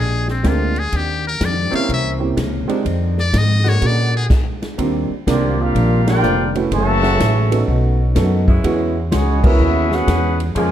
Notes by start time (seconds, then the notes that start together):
Already playing: A#1 A#2 G#3 D4 G4
0.00 G#4
0.28 C4, snare
0.42 D2 A#2 D3 G#3 C4 D4 F4 G4 A#4, kick, snare, hi-hat pedal, ride
0.48 F4
0.76 G#4, ride
0.92 D#2 D#3 C4 D4 G4, kick, ride
0.97 G4
1.27 A#4
1.40 F2 D#3 C4 D4 G4, kick, snare, hi-hat pedal, ride
1.45 D5
1.71 A#3 C4 C#4 E4 G4, muted upright bass stroke, ride
1.76 F5
1.89 C2 C3 E3 A#3 C#4, kick, ride
1.94 E5
2.19 A#3 C4 C#4 E4 G4
2.36 C#2 C3 E3 A#3 C#4, kick, snare, hi-hat pedal, ride
2.67 D#3 G#3 C4 D4 D#4 F4 G4, muted upright bass stroke, ride
2.84 F2 D#3 G#3 C4, kick, ride
3.18 D5, snare
3.33 F2 G#2 D#3 G#3 C4, kick, snare, hi-hat pedal, ride
3.38 D#5
3.64 D3 G#3 A#3 F#4, snare, ride
3.69 C#5
3.80 A#2 G#3 A#3 C#4 D4 F#4 G#4, kick, ride
3.86 D5
4.17 G#4
4.30 kick, snare, hi-hat pedal, crash, ride
4.62 snare, ride
4.78 D#2 D#3 G3 A#3 C4 D4 F4 G4, kick, ride
5.10 muted upright bass stroke
5.26 C2 D#3 G3 A#3 C4 D4 F4 G4 A#4 D5, kick, snare, hi-hat pedal, ride
5.58 A#3 D4 F4 G4 A#4 F5
5.74 A#1 D#3 G3 C4 D4, kick, ride
6.05 A#3 D4 F4 G4 A#4 D5 G5, snare, ride
6.21 F1 D3 D#3 G3 C4 D4 F4, hi-hat pedal
6.55 A3 C#4 E4 F#4 B4, ride
6.71 F#1 F#2 C#3 E3 A3 C#4 F#4 C#5 E5 A5, kick, ride
7.01 E3 A3 C#4 F#4, snare
7.19 A1 F#2 E3 A3 C#4, kick, snare, hi-hat pedal, ride
7.51 B3 C#4 D#4 F#4 A4, ride
7.67 B1 B2 A3 D#4 F#4, kick
8.15 F#2 B2 A3 B3 C#4 D#4 F#4 A4, kick, snare, hi-hat pedal, ride
8.47 E3 G#3 C#4 E4, kick
8.63 E2 E3 G#3 B3 C#4 E4 F#4 G#4, kick, ride
9.10 C#2 C#3 E3 G#3 B3 C#4 F#4 G#4 C5 C#5, kick, snare, hi-hat pedal, ride
9.43 B3 C#4 E4 F#4 G#4 A#4 B4 E5, kick, crash
9.59 D#2 E3 G#3 C#4 F#4
9.90 B3 C#4 F#4 B4 F#5, snare
9.94 G#4
10.07 E2 E3 G#3 C#4 F#4, kick, snare, hi-hat pedal, ride
10.40 ride
10.55 F2 A#2 C#3 F3 G#3 A#3 C#4 F4 G#4 A#4 C#5 G#5, kick, ride